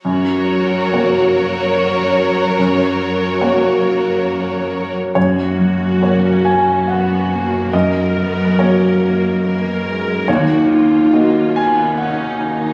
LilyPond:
<<
  \new Staff \with { instrumentName = "Violin section" } { \time 3/4 \key fis \major \tempo 4 = 71 <ais' cis''>2.~ | <ais' cis''>2~ <ais' cis''>8. r16 | r2. | r2. |
r2. | }
  \new Staff \with { instrumentName = "Grand piano" } { \time 3/4 \key fis \major r2. | r2. | cis''4. gis''8 fis''4 | dis''4 cis''2 |
cis''4. gis''8 fis''4 | }
  \new Staff \with { instrumentName = "Grand piano" } { \time 3/4 \key fis \major fis,4 <ais fis' cis''>2 | fis,4 <ais fis' cis''>2 | fis,4 <ais fis' cis''>2 | fis,4 <ais fis'>2 |
dis,4 <ais fis' dis''>2 | }
  \new Staff \with { instrumentName = "Harp" } { \time 3/4 \key fis \major r2. | r2. | fis,8 fis8 ais'8 cis'8 b8 cis'8 | fis,8 fis8 ais'8 cis'8 b8 cis'8 |
dis8 dis'8 fis'8 ais'8 gis'8 ais'8 | }
  \new Staff \with { instrumentName = "Viola section" } { \time 3/4 \key fis \major << { fis'2.~ | fis'2~ fis'8. r16 | fis'2 fis'4 | ais'2 ais'4 |
fis'8 eis'4. dis'4 | } \\ { fis2.~ | fis2~ fis8. r16 | ais4 cis'4 b8 ais8 | ais8 b8 cis'8 ais8 ais8 gis8 |
ais4 ais8 b8 cis'8 dis'8 | } >> }
  \new Staff \with { instrumentName = "Cello section" } { \clef bass \time 3/4 \key fis \major fis,2.~ | fis,2~ fis,8. r16 | fis,2.~ | fis,2. |
dis,2. | }
>>